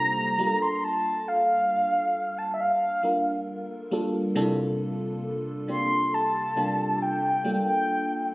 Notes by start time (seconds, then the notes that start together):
Already playing: C3 G3 A#3 D4 D#4 F4 G4 C5 A#5
0.39 G3 A#3 D4 F4 G4
0.47 A4
0.62 C6
0.84 A5
1.28 F5
2.38 A5
2.54 E5
2.60 F5
3.03 G3 A#3 D4 F4 A#4
3.91 G3 A#3 D4 F4 A4
4.35 C3 G3 A#3 D4 E4 A4
4.43 F4
5.68 C3 G3 A#3 D4 F4 G4 C6
6.14 A5
6.56 C3 G3 A#3 D4 F4 G4
7.02 G5
7.44 G3 A#3 D4 F4 A4
7.69 G5